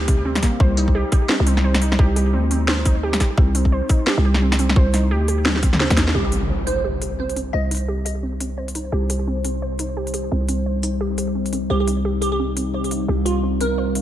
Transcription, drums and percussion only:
0.08 kick, closed hi-hat
0.35 snare, closed hi-hat
0.43 kick, snare, closed hi-hat
0.60 kick
0.77 closed hi-hat
0.88 kick
1.12 kick, closed hi-hat
1.29 snare
1.47 closed hi-hat
1.57 snare
1.74 snare, closed hi-hat
1.82 closed hi-hat
1.92 snare
1.99 kick
2.16 closed hi-hat
2.51 closed hi-hat
2.68 snare
2.85 kick, closed hi-hat
3.13 snare, closed hi-hat
3.20 kick, snare, closed hi-hat
3.38 kick
3.55 closed hi-hat
3.65 kick
3.89 kick, closed hi-hat
4.07 snare
4.34 snare
4.52 snare, closed hi-hat
4.59 closed hi-hat
4.69 snare
4.76 kick
4.94 snare, closed hi-hat
5.28 closed hi-hat
5.45 snare, high tom
5.56 snare
5.63 kick, closed hi-hat
5.73 snare, mid tom
5.80 snare
5.90 snare, closed hi-hat
5.97 kick, snare, closed hi-hat
6.08 snare
6.32 closed hi-hat
6.67 closed hi-hat
7.02 closed hi-hat
7.29 closed hi-hat
7.36 closed hi-hat
7.71 closed hi-hat
7.75 closed hi-hat
7.77 closed hi-hat
8.06 closed hi-hat
8.40 closed hi-hat
8.68 closed hi-hat
8.75 closed hi-hat
9.10 closed hi-hat
9.45 closed hi-hat
9.79 closed hi-hat
10.07 closed hi-hat
10.14 closed hi-hat
10.49 closed hi-hat
10.83 closed hi-hat
11.18 closed hi-hat
11.46 closed hi-hat
11.53 closed hi-hat
11.88 closed hi-hat
12.22 closed hi-hat
12.57 closed hi-hat
12.84 closed hi-hat
12.91 closed hi-hat
13.26 closed hi-hat
13.61 closed hi-hat
13.95 closed hi-hat

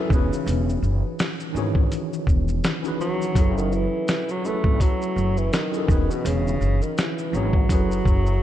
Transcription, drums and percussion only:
0.10 kick, shaker
0.33 shaker
0.48 closed hi-hat, shaker
0.69 shaker
0.83 shaker
1.19 snare, closed hi-hat, shaker
1.40 shaker
1.56 shaker
1.75 kick
1.92 closed hi-hat, shaker
2.13 shaker
2.27 kick, shaker
2.48 shaker
2.64 snare, closed hi-hat, shaker
2.84 shaker
3.01 shaker
3.22 shaker
3.35 kick, closed hi-hat, shaker
3.58 shaker
3.72 shaker
4.08 snare, closed hi-hat, shaker
4.29 shaker
4.45 shaker
4.64 kick
4.80 kick, closed hi-hat, shaker
5.02 shaker
5.18 shaker
5.37 shaker
5.53 snare, closed hi-hat, shaker
5.74 shaker
5.88 kick, shaker
6.11 shaker
6.26 closed hi-hat, shaker
6.47 shaker
6.61 shaker
6.82 shaker
6.98 snare, closed hi-hat, shaker
7.18 shaker
7.34 shaker
7.53 kick
7.69 kick, closed hi-hat, shaker
7.91 shaker
8.05 kick, shaker
8.26 shaker

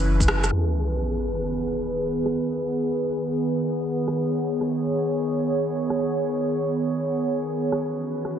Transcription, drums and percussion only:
0.20 kick, shaker
0.28 cross-stick
0.44 cross-stick, shaker
0.96 cross-stick
2.26 cross-stick, shaker
3.63 shaker
4.08 cross-stick, shaker
4.53 shaker
4.61 cross-stick
4.76 shaker
5.67 shaker
5.90 cross-stick, shaker
6.35 shaker
6.81 shaker
7.26 shaker
7.49 shaker
7.72 cross-stick, shaker
8.17 shaker
8.25 cross-stick

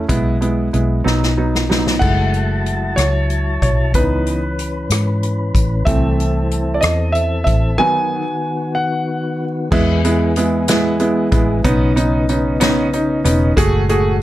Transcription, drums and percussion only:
0.09 kick, closed hi-hat
0.42 closed hi-hat
0.74 closed hi-hat
1.07 snare
1.23 snare
1.55 snare
1.71 snare
1.87 snare
2.02 kick, crash
2.34 closed hi-hat
2.66 closed hi-hat
2.97 cross-stick, closed hi-hat
3.30 closed hi-hat
3.62 kick, closed hi-hat
3.94 kick, closed hi-hat
4.26 closed hi-hat
4.59 closed hi-hat
4.90 cross-stick, closed hi-hat
5.23 closed hi-hat
5.55 kick, closed hi-hat
5.87 kick, closed hi-hat
6.20 closed hi-hat
6.51 closed hi-hat
6.82 cross-stick, closed hi-hat
7.15 closed hi-hat
7.47 kick, closed hi-hat
9.72 kick, crash
10.05 closed hi-hat
10.36 closed hi-hat
10.68 snare, closed hi-hat
11.00 closed hi-hat
11.32 kick, closed hi-hat
11.65 kick, closed hi-hat
11.97 closed hi-hat
12.29 closed hi-hat
12.61 snare, closed hi-hat
12.93 closed hi-hat
13.25 closed hi-hat
13.57 kick, closed hi-hat
13.89 closed hi-hat

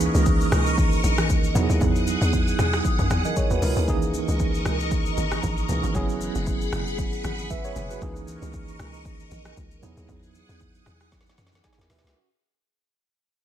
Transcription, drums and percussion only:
0.00 high conga, shaker
0.15 shaker
0.26 kick, shaker
0.41 shaker
0.52 cross-stick, high conga, low conga, shaker
0.66 shaker
0.78 kick, shaker
0.92 shaker
1.04 high conga, shaker
1.18 cross-stick, high conga, shaker
1.30 kick, shaker
1.44 shaker
1.55 high conga, low conga, shaker
1.70 shaker
1.81 kick, low conga, shaker
1.95 shaker
2.07 high conga, shaker
2.22 shaker
2.33 kick, shaker
2.48 shaker
2.59 cross-stick, high conga, low conga, shaker
2.73 cross-stick, shaker
2.85 kick, shaker
2.99 kick, shaker
3.10 cross-stick, high conga, shaker
3.25 high conga, shaker
3.36 kick, shaker
3.50 shaker
3.62 open hi-hat, high conga, low conga, shaker
3.76 shaker
3.88 kick, shaker
4.02 shaker
4.14 high conga, shaker
4.28 shaker
4.39 kick, shaker
4.54 shaker
4.65 cross-stick, high conga, low conga, shaker
4.80 shaker
4.91 kick, shaker
5.06 shaker
5.17 high conga, shaker
5.31 cross-stick, high conga, shaker
5.43 kick, shaker
5.57 shaker
5.69 high conga, low conga, shaker
5.83 shaker
5.95 kick, shaker
6.09 shaker
6.21 high conga, shaker
6.35 shaker
6.47 kick, shaker
6.61 shaker
6.73 cross-stick, high conga, low conga, shaker
6.87 shaker
6.98 kick, shaker
7.13 shaker
7.24 cross-stick, high conga, shaker
7.38 high conga, shaker
7.50 kick, shaker
7.64 shaker
7.76 high conga, low conga, shaker
7.90 shaker
8.02 kick, shaker
8.16 shaker
8.28 high conga, shaker
8.42 shaker
8.53 kick, shaker
8.68 shaker
8.79 cross-stick, high conga, low conga, shaker
8.94 shaker
9.05 kick, shaker
9.19 shaker
9.31 high conga, shaker
9.45 cross-stick, high conga, shaker
9.57 kick, shaker
9.71 shaker
9.83 high conga, low conga, shaker
9.97 shaker
10.09 kick, shaker
10.23 shaker
10.35 high conga, shaker
10.49 shaker
10.60 kick, shaker
10.75 shaker
10.86 cross-stick, high conga, low conga, shaker
11.00 cross-stick, shaker
11.12 kick, snare, shaker
11.21 snare
11.26 snare, shaker
11.38 snare, high conga, shaker
11.47 snare
11.52 snare, high conga, shaker
11.64 kick, snare, shaker
11.73 snare
11.78 snare, shaker
11.90 snare, open hi-hat, high conga, low conga, shaker
11.99 snare
12.04 snare, shaker

